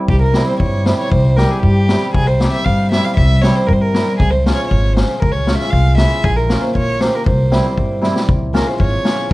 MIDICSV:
0, 0, Header, 1, 5, 480
1, 0, Start_track
1, 0, Tempo, 512821
1, 70, Time_signature, 2, 2, 24, 8
1, 8736, End_track
2, 0, Start_track
2, 0, Title_t, "Violin"
2, 0, Program_c, 0, 40
2, 87, Note_on_c, 0, 67, 83
2, 191, Note_off_c, 0, 67, 0
2, 210, Note_on_c, 0, 70, 78
2, 425, Note_off_c, 0, 70, 0
2, 444, Note_on_c, 0, 72, 79
2, 550, Note_off_c, 0, 72, 0
2, 562, Note_on_c, 0, 73, 75
2, 802, Note_on_c, 0, 72, 75
2, 816, Note_off_c, 0, 73, 0
2, 918, Note_off_c, 0, 72, 0
2, 928, Note_on_c, 0, 73, 84
2, 1035, Note_on_c, 0, 72, 89
2, 1049, Note_off_c, 0, 73, 0
2, 1279, Note_on_c, 0, 70, 86
2, 1293, Note_off_c, 0, 72, 0
2, 1365, Note_off_c, 0, 70, 0
2, 1365, Note_on_c, 0, 70, 61
2, 1409, Note_on_c, 0, 68, 67
2, 1423, Note_off_c, 0, 70, 0
2, 1518, Note_off_c, 0, 68, 0
2, 1524, Note_on_c, 0, 67, 82
2, 1968, Note_off_c, 0, 67, 0
2, 2002, Note_on_c, 0, 68, 94
2, 2122, Note_on_c, 0, 72, 84
2, 2136, Note_off_c, 0, 68, 0
2, 2356, Note_off_c, 0, 72, 0
2, 2362, Note_on_c, 0, 76, 85
2, 2476, Note_on_c, 0, 77, 84
2, 2490, Note_off_c, 0, 76, 0
2, 2718, Note_off_c, 0, 77, 0
2, 2729, Note_on_c, 0, 76, 91
2, 2851, Note_on_c, 0, 77, 85
2, 2865, Note_off_c, 0, 76, 0
2, 2962, Note_off_c, 0, 77, 0
2, 2967, Note_on_c, 0, 76, 95
2, 3201, Note_on_c, 0, 73, 83
2, 3215, Note_off_c, 0, 76, 0
2, 3329, Note_on_c, 0, 72, 84
2, 3343, Note_off_c, 0, 73, 0
2, 3434, Note_on_c, 0, 70, 80
2, 3448, Note_off_c, 0, 72, 0
2, 3493, Note_on_c, 0, 72, 74
2, 3507, Note_off_c, 0, 70, 0
2, 3572, Note_on_c, 0, 70, 81
2, 3586, Note_off_c, 0, 72, 0
2, 3907, Note_off_c, 0, 70, 0
2, 3913, Note_on_c, 0, 68, 91
2, 4029, Note_on_c, 0, 72, 78
2, 4043, Note_off_c, 0, 68, 0
2, 4249, Note_off_c, 0, 72, 0
2, 4255, Note_on_c, 0, 73, 76
2, 4370, Note_off_c, 0, 73, 0
2, 4376, Note_on_c, 0, 73, 70
2, 4617, Note_on_c, 0, 72, 70
2, 4631, Note_off_c, 0, 73, 0
2, 4866, Note_on_c, 0, 70, 83
2, 4880, Note_off_c, 0, 72, 0
2, 4979, Note_on_c, 0, 73, 79
2, 4993, Note_off_c, 0, 70, 0
2, 5212, Note_off_c, 0, 73, 0
2, 5218, Note_on_c, 0, 76, 81
2, 5341, Note_on_c, 0, 77, 89
2, 5356, Note_off_c, 0, 76, 0
2, 5591, Note_off_c, 0, 77, 0
2, 5596, Note_on_c, 0, 76, 91
2, 5840, Note_on_c, 0, 68, 96
2, 5854, Note_off_c, 0, 76, 0
2, 5956, Note_on_c, 0, 70, 78
2, 5970, Note_off_c, 0, 68, 0
2, 6194, Note_on_c, 0, 72, 67
2, 6208, Note_off_c, 0, 70, 0
2, 6316, Note_off_c, 0, 72, 0
2, 6334, Note_on_c, 0, 73, 89
2, 6561, Note_on_c, 0, 72, 79
2, 6575, Note_off_c, 0, 73, 0
2, 6695, Note_on_c, 0, 70, 77
2, 6709, Note_off_c, 0, 72, 0
2, 6801, Note_off_c, 0, 70, 0
2, 6806, Note_on_c, 0, 72, 72
2, 7482, Note_off_c, 0, 72, 0
2, 7993, Note_on_c, 0, 70, 68
2, 8121, Note_on_c, 0, 72, 75
2, 8135, Note_off_c, 0, 70, 0
2, 8236, Note_off_c, 0, 72, 0
2, 8250, Note_on_c, 0, 73, 77
2, 8686, Note_off_c, 0, 73, 0
2, 8736, End_track
3, 0, Start_track
3, 0, Title_t, "Hammered dulcimer"
3, 0, Program_c, 1, 15
3, 0, Note_on_c, 1, 55, 65
3, 117, Note_off_c, 1, 55, 0
3, 325, Note_on_c, 1, 55, 68
3, 330, Note_on_c, 1, 60, 60
3, 333, Note_on_c, 1, 64, 66
3, 441, Note_off_c, 1, 60, 0
3, 441, Note_off_c, 1, 64, 0
3, 803, Note_off_c, 1, 55, 0
3, 807, Note_on_c, 1, 60, 54
3, 813, Note_on_c, 1, 64, 59
3, 814, Note_on_c, 1, 55, 55
3, 921, Note_off_c, 1, 60, 0
3, 924, Note_off_c, 1, 64, 0
3, 1283, Note_off_c, 1, 55, 0
3, 1292, Note_on_c, 1, 55, 68
3, 1294, Note_on_c, 1, 60, 61
3, 1295, Note_on_c, 1, 67, 81
3, 1405, Note_off_c, 1, 60, 0
3, 1405, Note_off_c, 1, 67, 0
3, 1764, Note_off_c, 1, 55, 0
3, 1775, Note_on_c, 1, 55, 62
3, 1777, Note_on_c, 1, 64, 60
3, 1780, Note_on_c, 1, 60, 52
3, 1887, Note_off_c, 1, 64, 0
3, 1889, Note_off_c, 1, 60, 0
3, 2239, Note_off_c, 1, 55, 0
3, 2249, Note_on_c, 1, 55, 66
3, 2251, Note_on_c, 1, 60, 67
3, 2255, Note_on_c, 1, 67, 74
3, 2365, Note_off_c, 1, 60, 0
3, 2366, Note_off_c, 1, 67, 0
3, 2731, Note_off_c, 1, 55, 0
3, 2739, Note_on_c, 1, 55, 57
3, 2742, Note_on_c, 1, 60, 47
3, 2745, Note_on_c, 1, 64, 61
3, 2851, Note_off_c, 1, 60, 0
3, 2851, Note_off_c, 1, 64, 0
3, 3211, Note_off_c, 1, 55, 0
3, 3217, Note_on_c, 1, 60, 65
3, 3222, Note_on_c, 1, 55, 71
3, 3223, Note_on_c, 1, 64, 77
3, 3329, Note_off_c, 1, 60, 0
3, 3332, Note_off_c, 1, 64, 0
3, 3692, Note_off_c, 1, 55, 0
3, 3697, Note_on_c, 1, 60, 51
3, 3701, Note_on_c, 1, 64, 58
3, 3703, Note_on_c, 1, 55, 49
3, 3809, Note_off_c, 1, 60, 0
3, 3811, Note_off_c, 1, 64, 0
3, 3967, Note_off_c, 1, 55, 0
3, 4179, Note_on_c, 1, 56, 65
3, 4185, Note_on_c, 1, 61, 62
3, 4189, Note_on_c, 1, 65, 72
3, 4293, Note_off_c, 1, 61, 0
3, 4295, Note_off_c, 1, 65, 0
3, 4636, Note_off_c, 1, 56, 0
3, 4647, Note_on_c, 1, 56, 54
3, 4651, Note_on_c, 1, 65, 50
3, 4654, Note_on_c, 1, 61, 48
3, 4766, Note_off_c, 1, 65, 0
3, 4767, Note_off_c, 1, 61, 0
3, 5119, Note_off_c, 1, 56, 0
3, 5126, Note_on_c, 1, 65, 69
3, 5130, Note_on_c, 1, 56, 66
3, 5132, Note_on_c, 1, 61, 65
3, 5243, Note_off_c, 1, 65, 0
3, 5246, Note_off_c, 1, 61, 0
3, 5597, Note_off_c, 1, 56, 0
3, 5606, Note_on_c, 1, 56, 57
3, 5608, Note_on_c, 1, 61, 49
3, 5608, Note_on_c, 1, 64, 59
3, 5723, Note_off_c, 1, 64, 0
3, 5724, Note_off_c, 1, 61, 0
3, 5886, Note_off_c, 1, 56, 0
3, 6095, Note_on_c, 1, 58, 69
3, 6096, Note_on_c, 1, 61, 65
3, 6101, Note_on_c, 1, 65, 75
3, 6207, Note_off_c, 1, 61, 0
3, 6208, Note_off_c, 1, 58, 0
3, 6209, Note_off_c, 1, 65, 0
3, 6568, Note_on_c, 1, 61, 50
3, 6568, Note_on_c, 1, 67, 63
3, 6573, Note_on_c, 1, 58, 57
3, 6683, Note_off_c, 1, 61, 0
3, 6683, Note_off_c, 1, 67, 0
3, 6685, Note_off_c, 1, 58, 0
3, 7034, Note_on_c, 1, 55, 67
3, 7035, Note_on_c, 1, 60, 64
3, 7037, Note_on_c, 1, 64, 75
3, 7156, Note_off_c, 1, 60, 0
3, 7156, Note_off_c, 1, 64, 0
3, 7491, Note_off_c, 1, 55, 0
3, 7502, Note_on_c, 1, 55, 68
3, 7509, Note_on_c, 1, 60, 63
3, 7509, Note_on_c, 1, 64, 75
3, 7632, Note_off_c, 1, 60, 0
3, 7632, Note_off_c, 1, 64, 0
3, 7801, Note_off_c, 1, 55, 0
3, 7992, Note_on_c, 1, 56, 71
3, 7992, Note_on_c, 1, 61, 59
3, 7997, Note_on_c, 1, 65, 74
3, 8112, Note_off_c, 1, 61, 0
3, 8115, Note_off_c, 1, 65, 0
3, 8458, Note_off_c, 1, 56, 0
3, 8468, Note_on_c, 1, 56, 52
3, 8471, Note_on_c, 1, 61, 46
3, 8475, Note_on_c, 1, 65, 61
3, 8590, Note_off_c, 1, 61, 0
3, 8592, Note_off_c, 1, 65, 0
3, 8736, Note_off_c, 1, 56, 0
3, 8736, End_track
4, 0, Start_track
4, 0, Title_t, "Upright bass"
4, 0, Program_c, 2, 32
4, 80, Note_on_c, 2, 36, 69
4, 367, Note_off_c, 2, 36, 0
4, 560, Note_on_c, 2, 43, 82
4, 847, Note_off_c, 2, 43, 0
4, 1047, Note_on_c, 2, 36, 80
4, 1332, Note_off_c, 2, 36, 0
4, 1530, Note_on_c, 2, 43, 82
4, 1815, Note_off_c, 2, 43, 0
4, 2005, Note_on_c, 2, 36, 76
4, 2292, Note_off_c, 2, 36, 0
4, 2489, Note_on_c, 2, 43, 83
4, 2774, Note_off_c, 2, 43, 0
4, 2974, Note_on_c, 2, 36, 80
4, 3258, Note_off_c, 2, 36, 0
4, 3454, Note_on_c, 2, 43, 80
4, 3738, Note_off_c, 2, 43, 0
4, 3930, Note_on_c, 2, 37, 78
4, 4215, Note_off_c, 2, 37, 0
4, 4413, Note_on_c, 2, 32, 84
4, 4697, Note_off_c, 2, 32, 0
4, 4888, Note_on_c, 2, 37, 77
4, 5173, Note_off_c, 2, 37, 0
4, 5363, Note_on_c, 2, 36, 84
4, 5650, Note_off_c, 2, 36, 0
4, 5843, Note_on_c, 2, 34, 88
4, 6129, Note_off_c, 2, 34, 0
4, 6324, Note_on_c, 2, 34, 76
4, 6609, Note_off_c, 2, 34, 0
4, 6803, Note_on_c, 2, 36, 78
4, 7088, Note_off_c, 2, 36, 0
4, 7279, Note_on_c, 2, 43, 66
4, 7565, Note_off_c, 2, 43, 0
4, 7758, Note_on_c, 2, 37, 80
4, 8043, Note_off_c, 2, 37, 0
4, 8237, Note_on_c, 2, 32, 75
4, 8379, Note_off_c, 2, 32, 0
4, 8736, End_track
5, 0, Start_track
5, 0, Title_t, "Drums"
5, 79, Note_on_c, 9, 36, 78
5, 172, Note_off_c, 9, 36, 0
5, 317, Note_on_c, 9, 38, 76
5, 411, Note_off_c, 9, 38, 0
5, 561, Note_on_c, 9, 36, 62
5, 655, Note_off_c, 9, 36, 0
5, 805, Note_on_c, 9, 38, 75
5, 898, Note_off_c, 9, 38, 0
5, 1044, Note_on_c, 9, 36, 74
5, 1138, Note_off_c, 9, 36, 0
5, 1290, Note_on_c, 9, 38, 63
5, 1384, Note_off_c, 9, 38, 0
5, 1527, Note_on_c, 9, 36, 50
5, 1620, Note_off_c, 9, 36, 0
5, 1767, Note_on_c, 9, 38, 76
5, 1860, Note_off_c, 9, 38, 0
5, 2007, Note_on_c, 9, 36, 83
5, 2101, Note_off_c, 9, 36, 0
5, 2251, Note_on_c, 9, 38, 75
5, 2345, Note_off_c, 9, 38, 0
5, 2489, Note_on_c, 9, 36, 55
5, 2582, Note_off_c, 9, 36, 0
5, 2732, Note_on_c, 9, 38, 79
5, 2825, Note_off_c, 9, 38, 0
5, 2969, Note_on_c, 9, 36, 81
5, 3062, Note_off_c, 9, 36, 0
5, 3212, Note_on_c, 9, 38, 81
5, 3306, Note_off_c, 9, 38, 0
5, 3450, Note_on_c, 9, 36, 56
5, 3544, Note_off_c, 9, 36, 0
5, 3691, Note_on_c, 9, 38, 78
5, 3785, Note_off_c, 9, 38, 0
5, 3930, Note_on_c, 9, 36, 81
5, 4024, Note_off_c, 9, 36, 0
5, 4178, Note_on_c, 9, 38, 79
5, 4271, Note_off_c, 9, 38, 0
5, 4410, Note_on_c, 9, 36, 57
5, 4504, Note_off_c, 9, 36, 0
5, 4650, Note_on_c, 9, 38, 81
5, 4743, Note_off_c, 9, 38, 0
5, 4888, Note_on_c, 9, 36, 76
5, 4982, Note_off_c, 9, 36, 0
5, 5122, Note_on_c, 9, 38, 69
5, 5215, Note_off_c, 9, 38, 0
5, 5244, Note_on_c, 9, 38, 25
5, 5338, Note_off_c, 9, 38, 0
5, 5363, Note_on_c, 9, 36, 51
5, 5456, Note_off_c, 9, 36, 0
5, 5595, Note_on_c, 9, 38, 87
5, 5689, Note_off_c, 9, 38, 0
5, 5841, Note_on_c, 9, 36, 86
5, 5935, Note_off_c, 9, 36, 0
5, 6081, Note_on_c, 9, 38, 79
5, 6175, Note_off_c, 9, 38, 0
5, 6320, Note_on_c, 9, 36, 52
5, 6413, Note_off_c, 9, 36, 0
5, 6558, Note_on_c, 9, 38, 73
5, 6652, Note_off_c, 9, 38, 0
5, 6799, Note_on_c, 9, 36, 91
5, 6893, Note_off_c, 9, 36, 0
5, 7040, Note_on_c, 9, 38, 68
5, 7134, Note_off_c, 9, 38, 0
5, 7278, Note_on_c, 9, 36, 56
5, 7371, Note_off_c, 9, 36, 0
5, 7519, Note_on_c, 9, 38, 45
5, 7612, Note_off_c, 9, 38, 0
5, 7636, Note_on_c, 9, 38, 68
5, 7730, Note_off_c, 9, 38, 0
5, 7757, Note_on_c, 9, 36, 93
5, 7851, Note_off_c, 9, 36, 0
5, 8000, Note_on_c, 9, 38, 88
5, 8093, Note_off_c, 9, 38, 0
5, 8236, Note_on_c, 9, 36, 62
5, 8329, Note_off_c, 9, 36, 0
5, 8471, Note_on_c, 9, 38, 77
5, 8565, Note_off_c, 9, 38, 0
5, 8736, End_track
0, 0, End_of_file